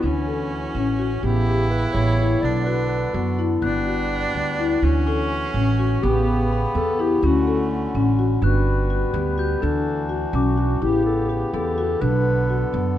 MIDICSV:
0, 0, Header, 1, 7, 480
1, 0, Start_track
1, 0, Key_signature, 2, "major"
1, 0, Tempo, 479233
1, 34, Time_signature, 5, 3, 24, 8
1, 13004, End_track
2, 0, Start_track
2, 0, Title_t, "Glockenspiel"
2, 0, Program_c, 0, 9
2, 0, Note_on_c, 0, 95, 48
2, 241, Note_off_c, 0, 95, 0
2, 3630, Note_on_c, 0, 90, 60
2, 5036, Note_off_c, 0, 90, 0
2, 5077, Note_on_c, 0, 85, 51
2, 6239, Note_off_c, 0, 85, 0
2, 6535, Note_on_c, 0, 83, 68
2, 7447, Note_off_c, 0, 83, 0
2, 8451, Note_on_c, 0, 90, 60
2, 9406, Note_on_c, 0, 91, 59
2, 9842, Note_off_c, 0, 90, 0
2, 9848, Note_off_c, 0, 91, 0
2, 10371, Note_on_c, 0, 86, 58
2, 11042, Note_off_c, 0, 86, 0
2, 13004, End_track
3, 0, Start_track
3, 0, Title_t, "Clarinet"
3, 0, Program_c, 1, 71
3, 34, Note_on_c, 1, 64, 73
3, 996, Note_off_c, 1, 64, 0
3, 1231, Note_on_c, 1, 67, 78
3, 1705, Note_on_c, 1, 71, 75
3, 1720, Note_off_c, 1, 67, 0
3, 1936, Note_on_c, 1, 73, 83
3, 1952, Note_off_c, 1, 71, 0
3, 2418, Note_on_c, 1, 74, 93
3, 2433, Note_off_c, 1, 73, 0
3, 2652, Note_off_c, 1, 74, 0
3, 2658, Note_on_c, 1, 71, 81
3, 2887, Note_off_c, 1, 71, 0
3, 2893, Note_on_c, 1, 71, 72
3, 3146, Note_on_c, 1, 66, 63
3, 3161, Note_off_c, 1, 71, 0
3, 3513, Note_off_c, 1, 66, 0
3, 6035, Note_on_c, 1, 67, 100
3, 6484, Note_off_c, 1, 67, 0
3, 6766, Note_on_c, 1, 69, 92
3, 7020, Note_on_c, 1, 67, 89
3, 7035, Note_off_c, 1, 69, 0
3, 7266, Note_on_c, 1, 66, 83
3, 7281, Note_off_c, 1, 67, 0
3, 7732, Note_off_c, 1, 66, 0
3, 8446, Note_on_c, 1, 66, 88
3, 9141, Note_on_c, 1, 67, 82
3, 9156, Note_off_c, 1, 66, 0
3, 9630, Note_on_c, 1, 69, 95
3, 9645, Note_off_c, 1, 67, 0
3, 10113, Note_off_c, 1, 69, 0
3, 10370, Note_on_c, 1, 66, 73
3, 10839, Note_on_c, 1, 67, 90
3, 10854, Note_off_c, 1, 66, 0
3, 11067, Note_off_c, 1, 67, 0
3, 11073, Note_on_c, 1, 69, 76
3, 11304, Note_on_c, 1, 67, 76
3, 11319, Note_off_c, 1, 69, 0
3, 11555, Note_on_c, 1, 69, 89
3, 11570, Note_off_c, 1, 67, 0
3, 12027, Note_on_c, 1, 71, 100
3, 12042, Note_off_c, 1, 69, 0
3, 12988, Note_off_c, 1, 71, 0
3, 13004, End_track
4, 0, Start_track
4, 0, Title_t, "Marimba"
4, 0, Program_c, 2, 12
4, 27, Note_on_c, 2, 62, 78
4, 163, Note_off_c, 2, 62, 0
4, 267, Note_on_c, 2, 69, 57
4, 538, Note_off_c, 2, 69, 0
4, 749, Note_on_c, 2, 61, 70
4, 885, Note_off_c, 2, 61, 0
4, 990, Note_on_c, 2, 66, 69
4, 1126, Note_off_c, 2, 66, 0
4, 1231, Note_on_c, 2, 59, 77
4, 1367, Note_off_c, 2, 59, 0
4, 1469, Note_on_c, 2, 67, 62
4, 1739, Note_off_c, 2, 67, 0
4, 1956, Note_on_c, 2, 59, 69
4, 2090, Note_off_c, 2, 59, 0
4, 2195, Note_on_c, 2, 64, 69
4, 2330, Note_off_c, 2, 64, 0
4, 2434, Note_on_c, 2, 59, 74
4, 2569, Note_off_c, 2, 59, 0
4, 2673, Note_on_c, 2, 66, 62
4, 2943, Note_off_c, 2, 66, 0
4, 3156, Note_on_c, 2, 59, 71
4, 3291, Note_off_c, 2, 59, 0
4, 3393, Note_on_c, 2, 64, 65
4, 3529, Note_off_c, 2, 64, 0
4, 3632, Note_on_c, 2, 59, 75
4, 3768, Note_off_c, 2, 59, 0
4, 3877, Note_on_c, 2, 66, 59
4, 4146, Note_off_c, 2, 66, 0
4, 4351, Note_on_c, 2, 59, 71
4, 4488, Note_off_c, 2, 59, 0
4, 4597, Note_on_c, 2, 64, 73
4, 4732, Note_off_c, 2, 64, 0
4, 4844, Note_on_c, 2, 62, 76
4, 4977, Note_off_c, 2, 62, 0
4, 5080, Note_on_c, 2, 69, 63
4, 5348, Note_off_c, 2, 69, 0
4, 5563, Note_on_c, 2, 61, 71
4, 5696, Note_off_c, 2, 61, 0
4, 5797, Note_on_c, 2, 66, 70
4, 5932, Note_off_c, 2, 66, 0
4, 6042, Note_on_c, 2, 59, 80
4, 6176, Note_off_c, 2, 59, 0
4, 6280, Note_on_c, 2, 67, 63
4, 6548, Note_off_c, 2, 67, 0
4, 6760, Note_on_c, 2, 59, 72
4, 6894, Note_off_c, 2, 59, 0
4, 7003, Note_on_c, 2, 64, 72
4, 7136, Note_off_c, 2, 64, 0
4, 7248, Note_on_c, 2, 61, 81
4, 7380, Note_off_c, 2, 61, 0
4, 7485, Note_on_c, 2, 69, 64
4, 7751, Note_off_c, 2, 69, 0
4, 7965, Note_on_c, 2, 61, 76
4, 8097, Note_off_c, 2, 61, 0
4, 8203, Note_on_c, 2, 66, 74
4, 8336, Note_off_c, 2, 66, 0
4, 8437, Note_on_c, 2, 62, 80
4, 8705, Note_off_c, 2, 62, 0
4, 8917, Note_on_c, 2, 66, 67
4, 9051, Note_off_c, 2, 66, 0
4, 9156, Note_on_c, 2, 59, 68
4, 9290, Note_off_c, 2, 59, 0
4, 9393, Note_on_c, 2, 66, 66
4, 9528, Note_off_c, 2, 66, 0
4, 9638, Note_on_c, 2, 62, 81
4, 9905, Note_off_c, 2, 62, 0
4, 10110, Note_on_c, 2, 66, 61
4, 10245, Note_off_c, 2, 66, 0
4, 10353, Note_on_c, 2, 61, 71
4, 10487, Note_off_c, 2, 61, 0
4, 10593, Note_on_c, 2, 66, 72
4, 10727, Note_off_c, 2, 66, 0
4, 10836, Note_on_c, 2, 64, 82
4, 11103, Note_off_c, 2, 64, 0
4, 11313, Note_on_c, 2, 67, 66
4, 11447, Note_off_c, 2, 67, 0
4, 11560, Note_on_c, 2, 59, 76
4, 11692, Note_off_c, 2, 59, 0
4, 11798, Note_on_c, 2, 66, 71
4, 11930, Note_off_c, 2, 66, 0
4, 12037, Note_on_c, 2, 62, 85
4, 12303, Note_off_c, 2, 62, 0
4, 12516, Note_on_c, 2, 66, 66
4, 12648, Note_off_c, 2, 66, 0
4, 12750, Note_on_c, 2, 59, 69
4, 12884, Note_off_c, 2, 59, 0
4, 13004, End_track
5, 0, Start_track
5, 0, Title_t, "Viola"
5, 0, Program_c, 3, 41
5, 40, Note_on_c, 3, 61, 71
5, 1247, Note_on_c, 3, 64, 86
5, 1262, Note_off_c, 3, 61, 0
5, 2443, Note_on_c, 3, 62, 70
5, 2458, Note_off_c, 3, 64, 0
5, 3402, Note_off_c, 3, 62, 0
5, 3647, Note_on_c, 3, 62, 84
5, 4840, Note_on_c, 3, 61, 86
5, 4855, Note_off_c, 3, 62, 0
5, 6046, Note_on_c, 3, 59, 76
5, 6061, Note_off_c, 3, 61, 0
5, 7243, Note_off_c, 3, 59, 0
5, 7253, Note_on_c, 3, 57, 66
5, 8165, Note_off_c, 3, 57, 0
5, 13004, End_track
6, 0, Start_track
6, 0, Title_t, "Harmonium"
6, 0, Program_c, 4, 20
6, 26, Note_on_c, 4, 66, 74
6, 28, Note_on_c, 4, 61, 58
6, 30, Note_on_c, 4, 52, 65
6, 1220, Note_off_c, 4, 66, 0
6, 1221, Note_off_c, 4, 61, 0
6, 1221, Note_on_c, 4, 49, 66
6, 1222, Note_off_c, 4, 52, 0
6, 1222, Note_on_c, 4, 59, 67
6, 1223, Note_on_c, 4, 67, 72
6, 2419, Note_off_c, 4, 49, 0
6, 2420, Note_off_c, 4, 67, 0
6, 2431, Note_on_c, 4, 69, 76
6, 2433, Note_on_c, 4, 50, 70
6, 3624, Note_off_c, 4, 69, 0
6, 3625, Note_off_c, 4, 50, 0
6, 3627, Note_on_c, 4, 55, 75
6, 3628, Note_on_c, 4, 66, 66
6, 4797, Note_off_c, 4, 59, 0
6, 4821, Note_off_c, 4, 66, 0
6, 4822, Note_off_c, 4, 55, 0
6, 4836, Note_on_c, 4, 66, 74
6, 4837, Note_on_c, 4, 52, 69
6, 4839, Note_on_c, 4, 61, 58
6, 6026, Note_off_c, 4, 66, 0
6, 6027, Note_off_c, 4, 52, 0
6, 6028, Note_off_c, 4, 61, 0
6, 6035, Note_on_c, 4, 67, 76
6, 6040, Note_on_c, 4, 49, 66
6, 6040, Note_on_c, 4, 59, 67
6, 7225, Note_off_c, 4, 67, 0
6, 7228, Note_off_c, 4, 49, 0
6, 7228, Note_off_c, 4, 59, 0
6, 7241, Note_on_c, 4, 50, 70
6, 7241, Note_on_c, 4, 61, 60
6, 7243, Note_on_c, 4, 66, 79
6, 8427, Note_off_c, 4, 50, 0
6, 8427, Note_off_c, 4, 61, 0
6, 8428, Note_off_c, 4, 66, 0
6, 8441, Note_on_c, 4, 55, 73
6, 8441, Note_on_c, 4, 59, 61
6, 8442, Note_on_c, 4, 71, 73
6, 9626, Note_off_c, 4, 55, 0
6, 9626, Note_off_c, 4, 59, 0
6, 9626, Note_on_c, 4, 62, 67
6, 9627, Note_off_c, 4, 71, 0
6, 9628, Note_on_c, 4, 52, 72
6, 9628, Note_on_c, 4, 66, 80
6, 10817, Note_off_c, 4, 62, 0
6, 10818, Note_off_c, 4, 52, 0
6, 10819, Note_off_c, 4, 66, 0
6, 10829, Note_on_c, 4, 49, 77
6, 10832, Note_on_c, 4, 59, 70
6, 10833, Note_on_c, 4, 67, 79
6, 12018, Note_off_c, 4, 49, 0
6, 12020, Note_off_c, 4, 67, 0
6, 12028, Note_on_c, 4, 50, 72
6, 12030, Note_on_c, 4, 69, 77
6, 13004, Note_off_c, 4, 50, 0
6, 13004, Note_off_c, 4, 59, 0
6, 13004, Note_off_c, 4, 69, 0
6, 13004, End_track
7, 0, Start_track
7, 0, Title_t, "Upright bass"
7, 0, Program_c, 5, 32
7, 34, Note_on_c, 5, 38, 77
7, 647, Note_off_c, 5, 38, 0
7, 747, Note_on_c, 5, 33, 73
7, 1159, Note_off_c, 5, 33, 0
7, 1229, Note_on_c, 5, 33, 79
7, 1845, Note_off_c, 5, 33, 0
7, 1947, Note_on_c, 5, 33, 80
7, 2360, Note_off_c, 5, 33, 0
7, 2428, Note_on_c, 5, 35, 75
7, 3045, Note_off_c, 5, 35, 0
7, 3146, Note_on_c, 5, 42, 83
7, 3560, Note_off_c, 5, 42, 0
7, 3625, Note_on_c, 5, 31, 83
7, 4244, Note_off_c, 5, 31, 0
7, 4351, Note_on_c, 5, 38, 76
7, 4763, Note_off_c, 5, 38, 0
7, 4829, Note_on_c, 5, 38, 77
7, 5446, Note_off_c, 5, 38, 0
7, 5549, Note_on_c, 5, 33, 80
7, 5962, Note_off_c, 5, 33, 0
7, 6043, Note_on_c, 5, 33, 87
7, 6654, Note_off_c, 5, 33, 0
7, 6758, Note_on_c, 5, 40, 82
7, 7167, Note_off_c, 5, 40, 0
7, 7237, Note_on_c, 5, 38, 84
7, 7850, Note_off_c, 5, 38, 0
7, 7959, Note_on_c, 5, 33, 82
7, 8366, Note_off_c, 5, 33, 0
7, 8431, Note_on_c, 5, 31, 83
7, 9045, Note_off_c, 5, 31, 0
7, 9151, Note_on_c, 5, 38, 89
7, 9561, Note_off_c, 5, 38, 0
7, 9642, Note_on_c, 5, 38, 83
7, 10251, Note_off_c, 5, 38, 0
7, 10347, Note_on_c, 5, 35, 84
7, 10758, Note_off_c, 5, 35, 0
7, 10834, Note_on_c, 5, 33, 78
7, 11445, Note_off_c, 5, 33, 0
7, 11553, Note_on_c, 5, 40, 86
7, 11960, Note_off_c, 5, 40, 0
7, 12033, Note_on_c, 5, 35, 86
7, 12643, Note_off_c, 5, 35, 0
7, 12757, Note_on_c, 5, 42, 84
7, 13004, Note_off_c, 5, 42, 0
7, 13004, End_track
0, 0, End_of_file